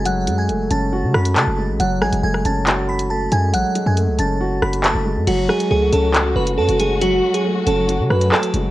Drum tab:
CC |----------------|----------------|----------------|x---------------|
HH |x-x-x-x----xx---|x--x--x-x--x--x-|x-x-x-x----xx---|x--x--x-x--x-xx-|
CP |------------x---|--------x-------|------------x---|--------x-------|
SD |----------r-----|--r--r----------|----------r-----|--r-------------|

CC |----------------|
HH |x--x--x-x--x-xx-|
CP |------------x---|
SD |----------r-----|